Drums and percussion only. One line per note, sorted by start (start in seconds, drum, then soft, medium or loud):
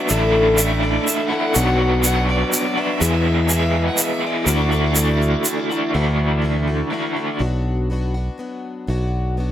0.09 shaker medium
0.58 shaker loud
1.08 shaker medium
1.55 shaker medium
2.04 shaker loud
2.53 shaker loud
3.01 shaker medium
3.49 shaker medium
3.97 shaker loud
4.47 shaker medium
4.72 shaker soft
4.95 shaker loud
5.22 shaker soft
5.45 shaker loud
5.71 shaker soft